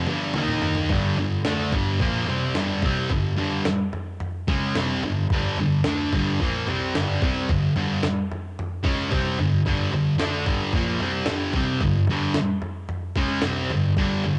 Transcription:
0.07 G2 D3 G3, high tom
0.34 D#3 A#3 D#4, mid tom
0.48 mid tom
0.62 floor tom
0.75 floor tom
0.89 G2 D3 G3, kick, floor tom
1.17 G2 D3, floor tom
1.45 D3 A3 D4, snare, floor tom
1.72 G2 D3 G3, kick, floor tom
2.00 A#2 F3 A#3, kick, floor tom
2.27 C3 G3 C4, floor tom
2.55 G2 D3 G3, snare, floor tom
2.82 C3 G3 C4, kick, floor tom
3.10 G2 D3, kick, floor tom
3.37 G2 D3 G3, floor tom
3.65 snare, floor tom
3.93 floor tom
4.20 floor tom
4.48 C#3 G#3 C#4, kick, floor tom
4.75 C3 G3 C4, snare, floor tom
5.03 G2 D3, floor tom
5.30 G2 D3 G3, kick, floor tom
5.57 G2 D3, floor tom
5.84 D3 A3 D4, snare, floor tom
6.13 G2 D3 G3, kick, floor tom
6.40 A#2 F3 A#3, kick, floor tom
6.68 C3 G3 C4, floor tom
6.95 G2 D3 G3, snare, floor tom
7.22 C3 G3 C4, kick, floor tom
7.49 G2 D3, kick, floor tom
7.76 G2 D3 G3, floor tom
8.03 snare, floor tom
8.31 floor tom
8.59 floor tom
8.84 C#3 G#3 C#4, kick, floor tom
9.10 C3 G3 C4, kick, floor tom
9.39 G2 D3, floor tom
9.66 G2 D3 G3, kick, floor tom
9.92 G2 D3, floor tom
10.18 D3 A3 D4, snare, floor tom
10.46 G2 D3 G3, kick, floor tom
10.73 A#2 F3 A#3, kick, floor tom
11.00 C3 G3 C4, floor tom
11.26 G2 D3, snare, floor tom
11.30 G3
11.53 C3 G3 C4, kick, floor tom
11.81 G2 D3, kick, floor tom
12.07 G2 D3 G3, floor tom
12.34 snare, floor tom
12.62 floor tom
12.89 floor tom
13.16 C#3 G#3 C#4, kick, floor tom
13.42 C3 G3, snare, floor tom
13.46 C4
13.70 G2 D3, floor tom
13.97 G2 D3 G3, kick, floor tom
14.24 G2 D3, floor tom

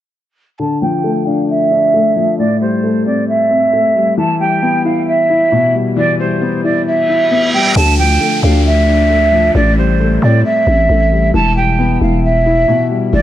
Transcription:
0.59 D3 A5
0.82 F3 G5
1.04 A3
1.27 D4 F5
1.49 E5
1.71 D4
1.94 A3
2.16 F3
2.39 A2 D5
2.61 G3 C5
2.84 A3
3.06 C4 D5
3.28 E5
3.51 C4
3.73 A3
3.96 G3
4.18 E3 A5
4.40 G3 G5
4.62 B3
4.85 E4 F5
5.07 E5
5.30 E4
5.52 B2
5.74 G3
5.97 E3 D5
6.19 G3 C5
6.41 B3
6.64 E4 D5
6.86 E5, reverse cymbal
7.09 E4
7.31 B3
7.54 G3 G5
7.76 D2 D3 A5, downlifter
7.98 F3 G5
8.21 A3
8.43 D2 D4 F5
8.66 E5
8.88 D4
9.10 A3
9.32 F3
9.55 A1 A2 D5
9.77 G3 C5
10.00 A3
10.22 A2 C4 D5
10.45 E5
10.67 A1 C4
10.89 A1 A3
11.12 G3
11.34 E1 E3 A5
11.57 G3 G5
11.79 B3
12.01 E1 E4 F5
12.24 E5
12.46 E4
12.68 B2
12.91 G3
13.13 E1 E3 D5

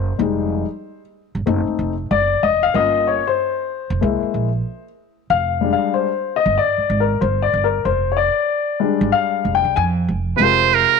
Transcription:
Already playing: F#1 G#3 A#3 E4 C5
0.19 F1 G3 G#3 D#4
1.35 G1
1.46 F#1 A3 C4 D#4
1.67 muted upright bass stroke
1.79 F1
2.11 F#1 D5
2.43 F1 D#5
2.63 F5
2.74 G1 A#3 C#4 F4 D#5
3.07 C#5
3.27 C5
3.90 F1
4.01 C2 G#3 A#3 E4
4.23 muted upright bass stroke
4.34 A#1
5.30 F1 F5
5.61 G3 G#3 D4
5.73 F5
5.94 C5
6.36 D#5
6.46 G1
6.58 D5
6.78 muted upright bass stroke
6.90 G#1
7.00 A#4
7.21 G1 C5
7.42 D5
7.53 G1
7.64 A#4
7.85 F1 C5
8.12 C#5
8.17 D5
8.80 G3 G#3 D4
9.01 G#1
9.12 F5
9.45 F1
9.55 G5
9.65 C2
9.76 F2 G#5
10.08 F1
10.36 F1 C3 G#3 C4 B4
10.42 F4 A#4 C5
10.74 A#4

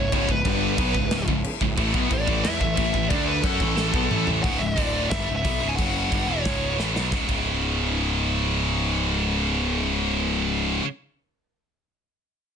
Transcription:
Already playing: C#1 C#3 G#3 C#4 E4 C#5
0.12 C#1 C#2 G#2 C#3 C#5, kick, crash
0.29 C#1 C#2 G#2 B4, kick
0.45 G1 G2 D3 G3 D4, kick, crash
0.78 B1 B2 C#3 F#3 G#3 B3 C#4 E4, kick, crash
0.95 C#1 C#2 G#2, kick
1.11 C#1 C#2 G#2, snare, crash
1.28 C#1 C#2 G#2, kick
1.44 crash
1.61 C#1 C#2 G#2, kick
1.77 A1 A2 E3 A3, kick, crash
1.94 B1 B2 F#3 B3, kick
2.11 A1 A2 E3 D5, kick, crash
2.28 A1 A2 E3 A3, kick
2.44 E2 E3 B3 E4 E5, snare, crash
2.60 A1 A2 E3 E5, kick
2.77 A1 A2 E3 A3, kick, crash
2.94 A1 A2 E3, kick
3.10 D2 D3 A3 D4 D5, kick, crash
3.27 B4
3.43 F#2 F#3 C#4 F#4 A4, kick, crash
3.60 A1 A2 E3 A3, kick
3.77 A1 A2 E3 A3, snare
3.93 B1 B2 F#3 B3, kick
4.10 A1 A2 E3 A3, mid tom
4.27 A1 A2 E3 A3, floor tom
4.42 C#1 C#2 G#2 C#3 F#5, kick, open hi-hat
4.59 C#1 C#2 G#2 E5
4.67 D5
4.76 D1 D2 A2 D3, kick, open hi-hat
5.10 G1 G2 D3 G3 E5, kick, snare, open hi-hat
5.28 C#1 C#2 G#2
5.36 E5
5.45 B1 B2 F#3 B3, kick, open hi-hat
5.61 C#1 C#2 G#2 C#3
5.69 G#5
5.76 F#1 F#2 C#3 F#3 F#5, kick, open hi-hat
6.12 G1 G2 D3 G3, kick, open hi-hat
6.27 E1 E2 B2 E3 C#5
6.45 C#1 C#2 G#2 C#3, kick, snare, open hi-hat
6.78 A1 A2 E3 A3, snare
6.94 B1 B2 F#3 B3, snare
7.10 C#1 C#2 G#2, kick, snare
7.14 C#3
7.26 C#1 C#2 G#2 C#3, kick, crash

